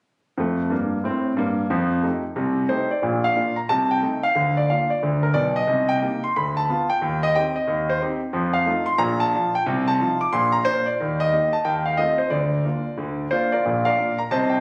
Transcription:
0.38 0.64 F2 medium
0.38 0.66 A3 medium
0.70 0.97 G2 medium
0.70 0.98 A#3 medium
1.04 1.31 A2 soft
1.04 1.31 C4 medium
1.37 1.64 G2 medium
1.37 1.65 A#3 medium
1.70 1.99 F2 medium
1.70 1.99 F3 medium
2.03 2.22 A3 soft
2.03 2.22 D#4 soft
2.03 2.22 G4 soft
2.36 2.65 C2 medium
2.36 2.65 C3 medium
2.69 2.88 A3 soft
2.69 2.88 D#4 soft
2.69 2.89 G4 soft
2.69 2.91 C5 medium
2.91 3.24 D5 medium
3.02 3.31 A#1 medium
3.02 3.31 A#2 medium
3.24 3.58 F5 medium
3.36 3.54 A#3 soft
3.36 3.55 D4 soft
3.36 3.55 F4 soft
3.56 3.69 A#5 medium
3.69 3.98 C2 medium
3.69 3.98 C3 medium
3.69 3.91 A5 medium
3.91 4.24 G5 medium
4.03 4.21 A3 soft
4.03 4.21 D#4 soft
4.23 4.57 F5 medium
4.35 4.64 D2 medium
4.35 4.64 D3 medium
4.57 4.69 D5 medium
4.70 4.88 A#3 soft
4.70 4.89 D4 soft
4.70 4.89 F4 soft
4.70 4.91 F5 medium
4.90 5.23 D5 medium
5.03 5.31 D2 medium
5.03 5.31 D3 medium
5.23 5.35 A#4 medium
5.34 5.61 B1 medium
5.34 5.62 B2 medium
5.34 5.56 D5 medium
5.56 5.89 D#5 medium
5.67 5.96 C2 medium
5.67 5.96 C3 medium
5.89 6.22 G5 medium
6.03 6.21 A#3 soft
6.03 6.21 D#4 soft
6.03 6.21 G4 soft
6.24 6.35 C6 medium
6.36 6.64 D2 medium
6.36 6.64 D3 medium
6.36 6.57 B5 medium
6.57 6.89 A5 medium
6.69 6.87 B3 soft
6.69 6.88 F4 soft
6.90 7.22 G5 medium
7.01 7.30 D#2 medium
7.01 7.29 D#3 medium
7.23 7.35 D#5 medium
7.35 7.54 C4 soft
7.35 7.53 D#4 soft
7.35 7.53 G4 medium
7.35 7.56 G5 medium
7.56 7.89 D#5 medium
7.67 7.96 D#2 medium
7.67 7.96 D#3 medium
7.89 8.01 C5 medium
8.01 8.19 C4 soft
8.01 8.20 D#4 soft
8.01 8.20 G4 medium
8.33 8.61 F2 medium
8.33 8.62 F3 medium
8.54 8.87 F5 medium
8.66 8.85 A3 soft
8.66 8.85 D#4 soft
8.66 8.86 F4 medium
8.86 8.99 C6 medium
8.98 9.27 A#1 medium
8.98 9.27 A#2 medium
8.98 9.20 A#5 loud
9.20 9.54 A5 medium
9.34 9.52 F3 soft
9.34 9.52 D4 soft
9.34 9.53 F4 soft
9.55 9.67 G5 medium
9.66 9.94 C2 medium
9.66 9.94 C3 medium
9.88 10.21 A5 medium
10.00 10.18 F3 soft
10.00 10.18 D#4 soft
10.00 10.19 F4 medium
10.21 10.33 D6 medium
10.33 10.61 A#1 medium
10.33 10.61 A#2 medium
10.33 10.54 C6 medium
10.52 10.65 A#5 medium
10.65 10.84 A#3 soft
10.65 10.84 D4 soft
10.65 10.84 F4 medium
10.65 10.86 C5 loud
10.86 11.19 D5 medium
11.00 11.28 D#2 medium
11.00 11.28 D#3 medium
11.20 11.53 D#5 medium
11.32 11.50 A#3 soft
11.32 11.51 D#4 soft
11.32 11.51 G4 soft
11.53 11.65 A5 medium
11.65 11.93 D#2 soft
11.65 11.93 D#3 medium
11.65 11.86 G5 medium
11.86 11.98 F5 medium
11.97 12.16 A3 soft
11.97 12.17 C4 soft
11.97 12.17 F4 soft
11.97 12.19 D#5 medium
12.18 12.31 C5 medium
12.30 12.59 D2 medium
12.30 12.59 D3 medium
12.30 13.51 D5 medium
12.65 12.83 A#3 soft
12.65 12.83 D4 soft
12.65 12.84 F4 soft
12.97 13.26 D2 medium
12.97 13.26 D3 medium
13.31 13.50 A#3 soft
13.31 13.50 D4 soft
13.31 13.51 F4 medium
13.31 13.52 C5 medium
13.52 13.84 F4 soft
13.52 13.84 A#4 soft
13.52 13.85 D5 medium
13.65 13.93 A#1 medium
13.65 13.93 A#2 medium
13.85 14.17 A#4 medium
13.85 14.17 D5 medium
13.85 14.19 F5 medium
13.98 14.16 A#3 soft
13.98 14.17 D4 soft
13.98 14.17 F4 soft
14.18 14.31 A#5 medium
14.31 14.59 C2 medium
14.31 14.59 C3 medium
14.31 14.51 C5 medium
14.31 14.51 D#5 medium
14.31 14.52 A5 medium
14.50 14.60 G5 medium

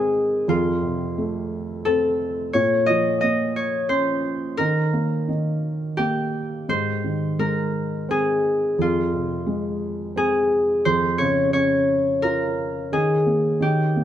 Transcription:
0.00 0.45 G#2 medium
0.00 0.51 D#3 soft
0.00 0.44 G#3 medium
0.00 0.46 C4 medium
0.00 1.91 G#4 medium
0.00 1.21 A#4 medium
0.00 0.37 C5 loud
0.48 2.50 F2 medium
0.48 3.01 F4 medium
0.82 2.16 C3 soft
1.18 2.51 A3 medium
1.85 2.53 C4 medium
1.85 4.05 A4 medium
2.53 4.54 A#2 medium
2.53 3.56 C#5 medium
2.86 4.21 F3 soft
2.86 3.20 D#5 medium
3.21 4.55 A#3 soft
3.21 4.99 D#5 medium
3.56 3.95 C#5 medium
3.89 4.56 C#4 medium
3.89 5.87 C5 medium
4.57 5.27 D#3 medium
4.57 6.70 A#4 medium
4.93 5.98 A#3 soft
5.29 6.65 D#3 soft
5.97 6.67 A#3 medium
5.97 8.17 G4 medium
6.69 8.75 G#2 medium
6.69 8.67 C5 medium
7.04 8.40 D#3 soft
7.39 8.75 G#3 soft
7.39 9.51 A#4 medium
8.09 8.77 C4 medium
8.09 10.17 G#4 medium
8.79 10.81 F2 medium
8.79 11.34 F4 medium
9.13 10.47 C3 soft
9.47 10.81 G#3 medium
10.16 10.83 C4 medium
10.16 12.45 G#4 medium
10.85 12.88 F2 medium
10.85 11.24 C5 medium
11.18 12.54 C#3 medium
11.18 11.53 C#5 loud
11.53 12.88 C#4 medium
11.53 13.44 C#5 medium
12.22 12.90 F4 medium
12.22 14.04 A#4 medium
12.92 13.59 D#3 medium
12.92 13.68 G#4 medium
13.26 13.60 A#3 soft
13.60 14.04 D#3 medium
13.60 14.04 G4 medium
13.96 14.04 A#3 medium

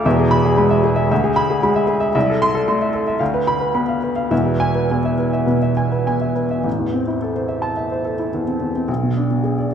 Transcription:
0.05 1.07 E1 medium
0.05 1.08 E2 medium
0.05 0.26 E5 medium
0.20 0.39 G#4 medium
0.31 0.52 B5 medium
0.45 0.65 G#4 medium
0.57 0.79 G#3 medium
0.57 0.79 B5 medium
0.71 0.92 E5 medium
0.84 1.05 G#4 medium
0.96 1.10 E5 medium
1.11 2.12 D2 medium
1.11 1.32 E5 medium
1.24 1.45 G#4 medium
1.36 1.57 B5 medium
1.50 1.71 G#4 medium
1.63 1.84 G#3 medium
1.63 1.84 B5 medium
1.76 1.97 E5 medium
1.87 2.09 G#4 medium
2.00 2.13 E5 medium
2.15 3.17 C2 medium
2.15 2.36 E5 medium
2.30 2.50 A4 medium
2.42 2.63 C6 medium
2.55 2.76 A4 medium
2.68 2.89 A3 medium
2.68 2.89 C6 medium
2.82 3.02 E5 medium
2.94 3.15 A4 medium
3.07 3.20 E5 medium
3.19 4.28 D2 medium
3.19 3.41 F5 medium
3.34 3.55 B4 medium
3.47 3.69 B5 medium
3.61 3.82 B4 medium
3.75 3.97 B3 medium
3.75 3.97 B5 medium
3.88 4.11 F5 medium
4.03 4.26 B4 medium
4.16 4.31 F5 medium
4.30 5.45 E1 medium
4.30 5.45 E2 medium
4.30 4.55 E5 medium
4.46 4.70 B4 medium
4.60 4.84 G#5 medium
4.75 4.99 B4 medium
4.91 5.14 B3 medium
4.91 5.14 G#5 medium
5.05 5.28 E5 medium
5.18 5.42 B4 medium
5.33 5.57 E5 medium
5.46 5.72 B2 medium
5.46 5.71 B4 medium
5.62 5.87 E5 medium
5.77 6.01 G#5 medium
5.92 6.16 B4 medium
6.07 6.31 B3 medium
6.07 6.31 G#5 medium
6.21 6.45 E5 soft
6.35 6.59 B4 soft
6.51 6.65 E5 soft
6.64 8.84 A1 medium
6.79 7.02 E2 soft
6.93 7.16 C4 soft
7.08 7.30 E4 soft
7.22 7.44 A4 soft
7.36 7.58 C5 soft
7.48 7.71 E5 soft
7.62 7.85 A5 medium
7.77 7.99 E5 soft
7.91 8.14 C5 soft
8.05 8.27 A4 soft
8.19 8.42 E4 soft
8.34 8.56 E2 soft
8.47 8.69 C4 soft
8.61 8.83 E2 soft
8.75 8.89 C4 soft
8.88 9.74 B1 medium
9.03 9.25 B2 soft
9.17 9.39 D4 soft
9.30 9.53 B2 soft
9.43 9.66 G#4 soft
9.58 9.74 D5 soft

